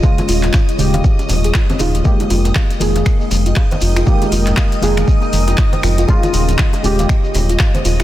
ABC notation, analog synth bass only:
X:1
M:4/4
L:1/8
Q:"Swing 16ths" 1/4=119
K:Fm
V:1 name="Analog synth bass" clef=bass
z E,,, z E,,, z E,,, z E,,, | z F,,, z F,,, z F,,, z F,,, | z F,,, z F,,, z F,,, z F,,, | z E,,, z E,,, z E,,, z E,,, |]